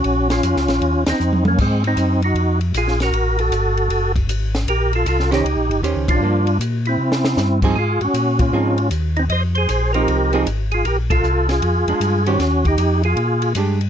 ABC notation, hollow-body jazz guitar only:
X:1
M:4/4
L:1/8
Q:"Swing" 1/4=155
K:Ebmix
V:1 name="Hollow-body jazz guitar"
z8 | z8 | z8 | z3 [E,DGc] z2 [E,DGc]2 |
[F,B,=D] z6 [F,CEA] | z4 [F,CEA] z3 | z3 [F,CE]2 [F,CEA] z2 | z4 z [A,=D]2 [E,_DGc] |
z6 [A,=DG] z |]